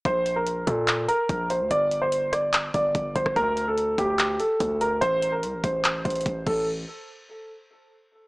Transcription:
<<
  \new Staff \with { instrumentName = "Grand piano" } { \time 4/4 \key a \phrygian \tempo 4 = 145 c''8. bes'8. a'4 bes'4 c''8 | d''8. c''8. d''4 d''4 c''8 | bes'8. a'8. g'4 a'4 bes'8 | c''8. bes'8. c''4 c''4 a'8 |
r1 | }
  \new Staff \with { instrumentName = "808-style bass" } { \clef bass \time 4/4 \key a \phrygian bes,,4. bes,4 r8 bes,,8. d,16 | g,,2~ g,,8 g,,8 g,,8 g,,16 g,,16 | d,4. d,4 r8 d,4 | a,,4 c,16 a,,16 a,,4 a,,8 a,,8 a,,8~ |
a,,8 r2. r8 | }
  \new DrumStaff \with { instrumentName = "Drums" } \drummode { \time 4/4 <hh bd>8 hh8 hh8 <hh bd>8 <hc hh>8 hh8 <hh bd>8 hh8 | hh8 hh8 hh8 <hh ss>8 <hc hh>8 <hh bd>8 <hh bd>8 <hh bd>16 <bd ss>16 | <hh bd>8 hh8 hh8 <hh bd>8 <hc hh>8 hh8 <hh bd>8 hh8 | hh8 hh8 hh8 <hh bd>8 <hc hh>8 <hh bd>32 hh32 hh32 hh32 <hh bd>8 <cymc bd>8 |
r4 r4 r4 r4 | }
>>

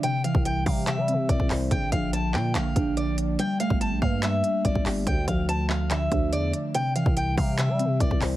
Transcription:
<<
  \new Staff \with { instrumentName = "Steel-string acoustic guitar" } { \time 4/4 \key c \mixolydian \tempo 4 = 143 g''8 f''8 g''8 f''8 e''4 d''8 r8 | g''8 f''8 a''8 g''8 f''4 d''8 r8 | g''8 f''8 a''8 f''8 e''4 d''8 r8 | g''8 f''8 a''8 f''8 e''4 d''8 r8 |
g''8 f''8 g''8 f''8 e''4 d''8 r8 | }
  \new Staff \with { instrumentName = "Synth keys" } { \clef bass \time 4/4 \key c \mixolydian c8 e4 g8 c8 c'8 c8 c''8 | d8 f4 bes8 d8 d'8 d8 d''8 | g8 a4 bes8 g8 d'8 g8 g'8 | d8 f4 a8 d8 d'8 d8 d''8 |
c8 e4 g8 c8 c'8 c8 c''8 | }
  \new Staff \with { instrumentName = "808-style bass" } { \clef bass \time 4/4 \key c \mixolydian r8. c,8. c8. g16. c16. c,16 c,16 c,8 | bes,,8 bes,,4 bes,8 bes,,8 bes,,4. | r8. g,,8 bes,,16 g,4 r8 g,,16 g,,16 g,,8 | d,8 d,2 d,8 e,8 r8 |
r8. c,8. c8. g16. c16. c,16 c,16 c,8 | }
  \new DrumStaff \with { instrumentName = "Drums" } \drummode { \time 4/4 hh8 hh16 bd16 hh8 <hho bd>8 <hc hh>8 hh8 <hh bd>16 bd16 <hc hho>8 | <hh bd>8 <hh bd>8 hh8 hc8 <hc hh>8 <hh bd>8 hh8 hh8 | hh8 hh16 bd16 hh8 bd8 <hc hh>8 hh8 <hh bd>16 bd16 <hc hho>8 | <hh bd>8 <hh bd>8 hh8 hc8 <hc hh>8 <hh bd>8 hh8 hh8 |
hh8 hh16 bd16 hh8 <hho bd>8 <hc hh>8 hh8 <hh bd>16 bd16 <hc hho>8 | }
>>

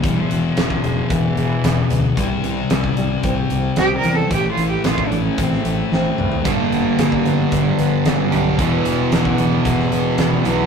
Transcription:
<<
  \new Staff \with { instrumentName = "Cello" } { \time 4/4 \key e \phrygian \tempo 4 = 112 g16 f8 f4~ f16 e2 | r2. \tuplet 3/2 { g'8 bes'8 a'8 } | \tuplet 3/2 { g'8 f'8 g'8 f'8 d'8 cis'8 c'8 a8. r16 } r4 | bes2 g16 f8. g4 |
r1 | }
  \new Staff \with { instrumentName = "Steel-string acoustic guitar" } { \clef bass \time 4/4 \key e \phrygian e,8 b,4 gis8 b8 gis8 b8 e8 | c8 e8 e8 g8 c'8 g8 c'8 e8 | a,8 e8 e8 a8 c'8 a8 c'8 e8 | g,8 d8 g8 b8 d'8 b8 d'8 g8 |
e,8 b,8 e8 gis8 b8 gis8 b8 e8 | }
  \new Staff \with { instrumentName = "Distorted electric guitar" } { \clef bass \time 4/4 \key e \phrygian <e, b, e>1 | <c g c'>1 | <a, e a>1 | <g, d g>1 |
<e, b, e>1 | }
  \new Staff \with { instrumentName = "Distorted electric guitar" } { \clef bass \time 4/4 \key e \phrygian r1 | r1 | r1 | <g, d g>2.~ <g, d g>8 <g, d g>8 |
<e, b, e>2.~ <e, b, e>8 <e, b, e>8 | }
  \new Staff \with { instrumentName = "Fretless electric bass" } { \clef bass \time 4/4 \key e \phrygian e,,8 e,,8 e,,8 e,,8 e,,8 e,,8 e,,8 d,8 | c,8 c,8 c,8 c,8 c,8 c,8 c,8 e,8 | a,,8 a,,8 a,,8 a,,8 a,,8 a,,8 a,,8 c,8 | g,,8 g,,8 g,,8 g,,8 g,,8 g,,8 g,,8 b,,8 |
e,,8 e,,8 e,,8 e,,8 e,,8 e,,8 e,,8 b,,8 | }
  \new DrumStaff \with { instrumentName = "Drums" } \drummode { \time 4/4 <hh bd>8 hh8 <hh sn>16 bd16 hh8 <hh bd>8 hh8 <hh sn>8 hh8 | <hh bd>8 hh8 <hh sn>16 bd16 hh8 <hh bd>8 hh8 <hh sn>8 hh8 | <hh bd>8 hh8 <hh sn>16 bd16 hh8 <hh bd>16 sn16 hh8 sn8 toml16 tomfh16 | <hh bd>8 hh8 <hh sn>16 bd16 hh8 <hh bd>8 hh8 <hh sn>8 hh8 |
<hh bd>8 hh8 <hh sn>16 bd16 hh8 <hh bd>16 sn16 hh8 <hh sn>8 hh8 | }
>>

